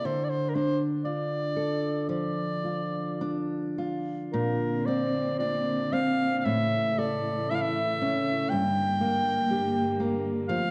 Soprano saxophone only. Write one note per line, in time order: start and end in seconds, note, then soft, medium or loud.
0.05 0.26 C5 medium
0.24 0.31 D5 medium
0.29 0.51 C5 medium
0.49 0.56 A#4 soft
0.55 0.79 C5 medium
1.05 2.05 D5 medium
2.10 3.75 D5 medium
4.33 4.87 A#4 medium
4.86 5.38 D5 medium
5.39 5.94 D5 medium
5.93 6.39 F5 medium
6.39 6.46 F5 medium
6.45 7.00 E5 medium
6.98 7.51 D5 medium
7.50 7.57 E5 medium
7.55 7.63 F5 medium
7.62 8.51 E5 medium
8.49 10.24 G5 loud
10.48 10.71 F5 medium